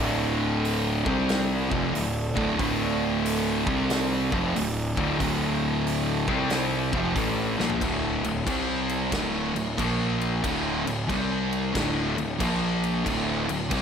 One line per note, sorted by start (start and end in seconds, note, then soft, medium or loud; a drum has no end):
0.00 1.02 D1 loud
0.00 1.04 D2 medium
0.00 1.04 A2 loud
0.00 1.04 D3 loud
0.00 1.04 D4 medium
0.00 1.04 A4 medium
0.00 7.79 D5 medium
0.65 open hi-hat medium
1.05 1.67 C2 loud
1.05 1.69 C3 medium
1.05 1.69 G3 loud
1.05 1.70 C4 loud
1.05 kick loud
1.29 snare loud
1.29 open hi-hat medium
1.70 1.92 F1 loud
1.70 1.93 F2 loud
1.70 1.93 C3 loud
1.70 1.93 F3 loud
1.70 3.65 D4 medium
1.70 3.65 A4 medium
1.70 kick loud
1.94 2.33 D1 medium
1.94 2.28 D2 medium
1.94 2.28 A2 medium
1.94 open hi-hat medium
2.35 2.58 D1 loud
2.35 2.57 D2 loud
2.35 2.57 A2 loud
2.35 2.58 D3 loud
2.35 kick loud
2.58 3.63 D1 loud
2.58 3.65 D2 medium
2.58 3.65 A2 medium
2.58 3.65 D3 loud
2.58 kick loud
2.58 open hi-hat medium
3.25 open hi-hat medium
3.66 4.28 C2 medium
3.66 4.30 C3 loud
3.66 4.30 G3 medium
3.66 4.31 C4 loud
3.66 kick loud
3.90 snare loud
3.90 open hi-hat medium
4.31 4.53 F1 loud
4.31 4.54 F2 medium
4.31 4.54 C3 loud
4.31 4.54 F3 loud
4.31 6.26 D4 medium
4.31 6.26 A4 medium
4.31 kick loud
4.54 4.95 D1 medium
4.54 4.89 D2 medium
4.54 4.89 A2 medium
4.54 open hi-hat medium
4.97 5.19 D1 loud
4.97 5.18 D2 medium
4.97 5.19 A2 medium
4.97 5.20 D3 loud
4.97 kick loud
5.20 6.24 D1 loud
5.20 6.28 D2 medium
5.20 6.29 A2 loud
5.20 6.29 D3 loud
5.20 kick loud
5.20 open hi-hat medium
5.87 open hi-hat medium
6.28 6.89 C2 loud
6.28 6.92 C3 loud
6.28 6.93 G3 loud
6.28 6.92 C4 loud
6.28 kick loud
6.50 snare loud
6.50 open hi-hat medium
6.93 7.15 F1 loud
6.93 7.15 F2 medium
6.93 7.16 C3 loud
6.93 7.16 F3 loud
6.93 kick loud
7.16 7.56 A1 loud
7.16 7.57 A2 loud
7.16 7.58 E3 loud
7.16 7.58 A3 loud
7.16 kick loud
7.16 open hi-hat medium
7.59 7.80 A#1 loud
7.59 7.81 A#2 loud
7.59 7.81 F3 loud
7.59 7.82 A#3 loud
7.59 snare medium
7.70 floor tom medium
7.81 8.21 D1 loud
7.81 8.23 D2 medium
7.81 8.23 A2 medium
7.81 8.24 D3 medium
7.81 kick loud
7.81 crash medium
8.24 8.46 D1 medium
8.24 8.43 D2 medium
8.24 8.43 A2 medium
8.24 crash medium
8.47 9.09 C2 loud
8.47 9.12 C3 medium
8.47 9.12 G3 loud
8.47 9.12 C4 medium
8.47 kick loud
8.47 snare soft
8.47 crash medium
8.89 crash medium
9.12 9.53 D1 medium
9.12 9.54 D2 medium
9.12 9.54 A2 loud
9.12 9.55 D3 loud
9.12 kick loud
9.12 snare loud
9.12 crash medium
9.55 9.76 D1 medium
9.55 9.74 D2 medium
9.55 9.74 A2 medium
9.55 crash medium
9.78 10.40 A#1 loud
9.78 10.43 A#2 loud
9.78 10.44 F3 loud
9.78 10.44 A#3 loud
9.78 kick loud
9.78 crash medium
10.21 crash medium
10.44 10.84 D1 medium
10.44 10.85 D2 medium
10.44 10.85 A2 loud
10.44 10.86 D3 loud
10.44 kick loud
10.44 crash medium
10.86 11.08 D1 medium
10.86 11.05 D2 medium
10.86 11.05 A2 medium
10.86 crash medium
11.08 11.71 C2 loud
11.08 11.74 C3 medium
11.08 11.74 G3 loud
11.08 11.74 C4 loud
11.08 kick loud
11.08 snare soft
11.08 crash medium
11.53 crash medium
11.74 12.15 D1 medium
11.74 12.16 D2 loud
11.74 12.16 A2 loud
11.74 12.17 D3 loud
11.74 kick loud
11.74 snare loud
11.74 crash medium
12.17 12.39 D1 medium
12.17 12.36 D2 medium
12.17 12.36 A2 medium
12.17 crash medium
12.40 13.02 A#1 loud
12.40 13.05 A#2 loud
12.40 13.05 F3 loud
12.40 13.06 A#3 loud
12.40 kick loud
12.40 crash medium
12.84 crash medium
13.06 13.46 D1 loud
13.06 13.47 D2 medium
13.06 13.48 A2 loud
13.06 13.48 D3 loud
13.06 kick loud
13.06 crash medium
13.48 13.70 D1 medium
13.48 13.67 D2 medium
13.48 13.68 A2 medium
13.48 crash medium
13.71 13.82 C2 loud
13.71 13.82 C3 medium
13.71 13.82 G3 medium
13.71 13.82 C4 loud
13.71 kick loud
13.71 crash medium